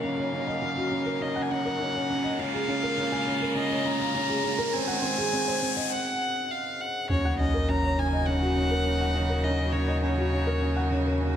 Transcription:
0.00 2.35 C#3 medium
0.00 2.35 F#3 medium
0.00 2.35 A#3 medium
0.00 0.04 C#4 medium
0.00 0.12 C#4 medium
0.00 2.35 D#4 medium
0.00 0.77 F#4 medium
0.00 1.06 A#4 medium
0.00 4.71 A#4 medium
0.00 0.18 C#5 medium
0.00 0.47 D#5 medium
0.00 1.23 F5 medium
0.00 1.36 F#5 medium
0.00 riser medium
0.18 0.32 C#5 medium
0.33 0.47 C#4 medium
0.47 0.61 D#5 medium
0.62 0.70 C#4 medium
0.77 0.91 F#4 medium
0.91 1.05 C#4 medium
1.06 1.20 A#4 medium
1.21 1.35 C#4 medium
1.21 1.44 D#5 medium
1.36 1.50 F#5 medium
1.42 1.52 G#5 medium
1.51 1.65 C#4 medium
1.51 2.40 F#5 loud
1.65 1.74 A#4 medium
1.80 1.88 C#4 medium
1.95 2.09 C#5 medium
2.10 2.24 C#4 medium
2.24 2.38 D#5 medium
2.39 4.72 C#3 medium
2.39 4.72 G#3 medium
2.39 4.72 A#3 medium
2.39 2.47 C#4 medium
2.39 4.72 F4 medium
2.39 3.56 F5 loud
2.54 2.68 G#4 medium
2.68 2.82 C#4 medium
2.83 2.97 A#4 medium
2.98 3.12 C#4 medium
3.12 3.26 G#5 medium
3.27 3.41 C#4 medium
3.42 3.50 A#4 medium
3.56 3.64 C#4 medium
3.56 3.87 D#5 loud
3.70 3.85 C#5 medium
3.85 3.99 C#4 medium
3.85 4.75 A#5 loud
4.00 4.14 F5 medium
4.14 4.23 C#4 medium
4.29 4.44 G#4 medium
4.44 4.58 C#4 medium
4.59 4.73 A#4 loud
4.73 5.91 D#3 medium
4.73 5.91 G#3 medium
4.73 4.88 C4 medium
4.73 5.91 C4 medium
4.73 5.90 F#4 medium
4.73 5.91 C5 medium
4.73 5.92 G#5 loud
4.88 5.02 F#5 medium
5.02 5.17 C4 medium
5.18 5.26 G#4 medium
5.33 5.41 C4 medium
5.48 5.61 C5 medium
5.62 5.76 C4 medium
5.77 5.91 D#5 medium
5.92 6.52 F#5 loud
6.51 6.82 F5 medium
6.81 7.10 F#5 medium
7.09 11.37 D#2 medium
7.09 11.37 C#3 medium
7.09 11.37 F#3 medium
7.09 11.37 A#3 medium
7.09 7.24 C#4 medium
7.09 11.37 D#4 medium
7.09 11.37 F#4 medium
7.09 7.37 C#5 loud
7.09 sub drop medium
7.25 7.39 F#5 medium
7.40 7.53 C#4 medium
7.40 7.71 D#5 medium
7.54 7.62 A#4 medium
7.69 7.77 C#4 medium
7.69 8.01 A#5 loud
7.84 7.97 C#5 medium
7.98 8.12 C#4 medium
7.98 8.28 G#5 loud
8.13 8.27 D#5 medium
8.26 8.36 C#4 medium
8.26 9.45 F#5 loud
8.42 8.56 F#4 medium
8.57 8.70 C#4 medium
8.71 8.85 A#4 medium
8.86 9.00 C#4 medium
9.01 9.15 F#5 medium
9.15 9.29 C#4 medium
9.30 9.38 A#4 medium
9.44 9.53 C#4 medium
9.44 9.74 D#5 medium
9.58 9.73 C#5 medium
9.72 9.88 C#4 medium
9.72 10.02 C#5 medium
9.88 10.02 D#5 medium
10.03 10.12 C#4 medium
10.03 11.17 C#5 medium
10.18 10.32 F#4 medium
10.33 10.47 C#4 medium
10.47 10.61 A#4 medium
10.62 10.76 C#4 medium
10.77 10.91 F#5 medium
10.92 11.06 C#4 medium
11.06 11.15 A#4 medium
11.21 11.29 C#4 medium

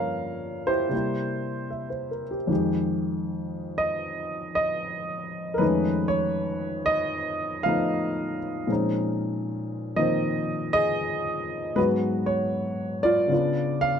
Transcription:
0.00 0.91 G2 soft
0.00 0.92 F3 soft
0.00 0.91 A#3 soft
0.00 0.94 C#4 soft
0.00 0.94 A#4 medium
0.00 0.93 C#5 medium
0.00 0.94 F5 medium
0.67 0.93 E4 soft
0.67 2.21 G4 medium
0.67 1.89 C5 medium
0.89 2.49 C3 soft
0.89 2.50 G3 soft
0.89 2.50 A#3 soft
0.95 2.51 E4 soft
1.70 2.08 E5 soft
1.90 2.24 C5 soft
2.11 2.35 A#4 soft
2.31 2.51 G4 soft
2.47 5.58 F2 soft
2.47 5.59 D#3 soft
2.47 5.60 G#3 soft
2.52 5.63 G4 soft
3.78 4.54 D#5 medium
4.55 5.58 D#5 medium
5.54 5.60 A#4 medium
5.54 6.08 B4 medium
5.59 8.68 F2 soft
5.59 8.69 D#3 soft
5.59 8.67 G#3 soft
5.59 7.64 A3 soft
5.59 7.12 D#4 medium
5.64 8.69 C#4 soft
6.08 6.90 C#5 medium
6.86 7.61 D#5 loud
7.63 8.66 F3 soft
7.63 8.69 A3 soft
7.63 8.70 B3 soft
7.63 8.38 F5 medium
7.69 8.70 D#4 soft
8.67 11.75 A#2 soft
8.67 9.95 F3 soft
8.67 11.76 G#3 soft
8.67 9.98 C4 soft
8.67 11.77 C#4 soft
8.72 11.78 D#4 medium
9.96 11.76 D#3 soft
9.96 11.76 F3 soft
9.96 11.77 A#3 soft
9.96 11.77 C4 medium
9.96 10.72 D#5 medium
10.73 11.73 G#4 medium
10.73 11.79 D#5 loud
11.76 13.31 G#2 soft
11.76 13.32 F#3 soft
11.76 13.32 G#3 soft
11.76 13.28 B3 soft
11.76 13.28 F#4 medium
11.76 11.88 B4 medium
12.26 13.01 C#5 medium
13.03 13.32 F4 medium
13.03 13.79 D5 medium
13.28 14.00 C#3 soft
13.28 14.00 B3 soft
13.28 14.00 D4 soft
13.33 14.00 F4 medium
13.81 14.00 F5 medium

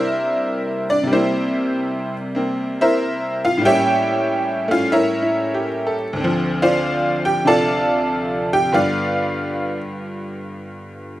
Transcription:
0.00 1.02 C3 soft
0.00 1.06 G3 soft
0.00 1.10 A#3 soft
0.00 0.89 D4 soft
0.00 0.86 E4 medium
0.00 0.86 A#4 medium
0.00 0.86 C5 medium
0.00 0.86 E5 medium
0.90 1.09 D4 medium
0.90 1.09 D5 medium
1.03 3.60 C3 medium
1.03 3.60 G3 soft
1.11 2.33 A#3 soft
1.11 2.14 C4 medium
1.11 2.14 E4 medium
1.11 2.14 G4 medium
1.11 2.14 C5 medium
2.35 3.62 A#3 soft
2.35 3.63 C4 soft
2.81 3.40 E4 medium
2.81 3.40 A#4 medium
2.81 3.40 C5 medium
2.81 3.40 E5 medium
3.45 3.64 F4 medium
3.45 3.63 F5 medium
3.58 6.15 A2 soft
3.58 6.17 G3 soft
3.65 6.18 A#3 soft
3.65 4.70 C#4 soft
3.65 4.68 G4 medium
3.65 4.68 C#5 medium
3.65 4.67 E5 medium
3.65 4.67 G5 loud
4.68 6.17 A3 soft
4.68 6.18 C#4 soft
4.68 4.90 F4 medium
4.68 4.90 F5 medium
4.92 5.21 E4 medium
4.92 5.95 A#4 medium
4.92 5.95 C#5 medium
4.92 5.94 E5 medium
5.22 5.67 E4 soft
5.54 6.04 G4 soft
5.87 6.31 A4 soft
6.13 8.70 D2 soft
6.13 8.71 D3 soft
6.20 8.75 F3 medium
6.20 8.73 C4 soft
6.62 7.21 F4 medium
6.62 7.21 C5 medium
6.62 7.21 D5 medium
6.62 7.21 F5 medium
7.25 7.45 G4 medium
7.25 7.44 G5 medium
7.45 8.72 C3 soft
7.45 8.73 D4 soft
7.45 8.73 F4 medium
7.45 8.49 A4 medium
7.45 8.49 D5 medium
7.45 8.49 F5 medium
7.45 8.49 A5 medium
8.53 8.72 G4 medium
8.53 8.72 G5 medium
8.72 11.20 G2 soft
8.72 11.20 D3 soft
8.72 11.20 B3 soft
8.72 11.20 F4 soft
8.72 9.76 B4 medium
8.72 9.76 D5 medium
8.72 9.76 F5 medium

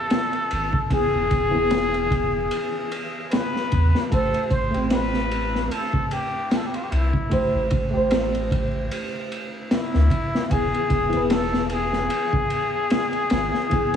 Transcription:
0.00 0.85 E3 medium
0.00 0.87 B3 medium
0.00 0.93 A4 loud
0.00 0.89 B4 medium
0.10 snare loud
0.10 ride medium
0.33 ride soft
0.51 0.71 G#1 medium
0.51 ride medium
0.73 kick medium
0.90 1.48 E3 medium
0.90 1.49 B3 medium
0.90 3.06 G#4 loud
0.90 1.49 G#4 medium
0.90 kick loud
0.90 ride medium
1.14 1.29 E1 medium
1.31 1.51 E1 medium
1.31 kick medium
1.31 ride medium
1.51 2.48 E1 medium
1.51 4.05 E3 medium
1.51 4.07 B3 medium
1.58 4.09 G#4 medium
1.71 snare loud
1.71 ride medium
1.94 ride soft
2.11 kick medium
2.11 ride medium
2.51 ride medium
2.91 ride medium
3.31 4.12 B4 loud
3.31 snare loud
3.31 ride medium
3.56 snare soft
3.72 3.92 E2 medium
3.72 kick loud
3.72 ride medium
3.95 snare soft
4.10 4.31 A1 loud
4.10 4.68 A3 medium
4.10 4.68 G4 medium
4.10 4.50 A4 loud
4.10 4.69 C5 medium
4.10 kick medium
4.10 ride medium
4.34 ride soft
4.50 4.71 A1 medium
4.50 4.88 C5 loud
4.50 kick medium
4.50 ride medium
4.71 5.68 A1 medium
4.71 7.25 A3 medium
4.71 7.27 G4 medium
4.71 ride soft
4.77 7.29 C4 medium
4.90 5.73 B4 loud
4.90 snare loud
4.90 ride medium
5.13 snare soft
5.31 ride medium
5.55 snare soft
5.71 6.14 A4 loud
5.71 ride medium
5.93 kick medium
6.11 6.57 G4 loud
6.11 ride medium
6.51 snare loud
6.51 ride medium
6.56 6.68 A4 medium
6.66 6.77 G4 medium
6.74 6.85 F4 medium
6.74 ride soft
6.83 6.93 G4 medium
6.91 7.11 C2 medium
6.91 7.71 E4 medium
6.91 ride medium
7.14 kick medium
7.30 7.87 A3 medium
7.30 7.88 G4 medium
7.30 7.89 C5 medium
7.30 kick loud
7.30 ride medium
7.54 7.69 A1 loud
7.71 7.91 A1 medium
7.71 kick medium
7.71 ride medium
7.90 10.45 A3 medium
7.90 10.47 G4 medium
7.95 8.88 A1 medium
7.95 10.48 C5 medium
8.11 snare loud
8.11 ride medium
8.35 ride soft
8.51 kick loud
8.51 ride medium
8.91 ride medium
9.32 ride medium
9.71 10.52 E4 loud
9.71 snare loud
9.71 ride medium
9.94 10.09 D2 medium
9.94 snare soft
10.10 kick medium
10.10 ride medium
10.35 snare soft
10.49 10.71 E1 loud
10.49 11.07 E3 medium
10.49 11.08 B3 medium
10.49 11.33 G#4 loud
10.49 11.09 G#4 medium
10.49 kick medium
10.49 ride medium
10.74 ride soft
10.90 11.11 E1 medium
10.90 kick medium
10.90 ride medium
11.10 12.08 E1 medium
11.10 13.65 E3 medium
11.10 13.67 B3 medium
11.10 ride soft
11.17 13.68 B4 medium
11.30 11.73 A4 loud
11.30 snare loud
11.30 ride medium
11.54 snare soft
11.69 13.96 G#4 loud
11.69 ride medium
11.93 snare soft
12.10 ride medium
12.33 kick medium
12.50 ride medium
12.90 snare loud
12.90 ride medium
13.13 ride soft
13.30 13.51 G#1 medium
13.30 snare loud
13.30 ride medium
13.54 snare soft
13.70 13.96 E3 medium
13.70 13.96 B3 medium
13.70 13.96 G#4 medium
13.70 kick medium
13.70 ride medium

